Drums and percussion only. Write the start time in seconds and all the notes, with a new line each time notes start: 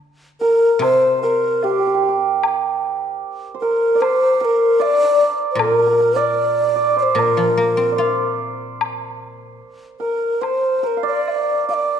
0.82 high woodblock
1.63 low woodblock
2.43 high woodblock
4.02 high woodblock
4.82 low woodblock
5.59 high woodblock
7.18 high woodblock
7.99 low woodblock
8.81 high woodblock
10.43 high woodblock
11.28 low woodblock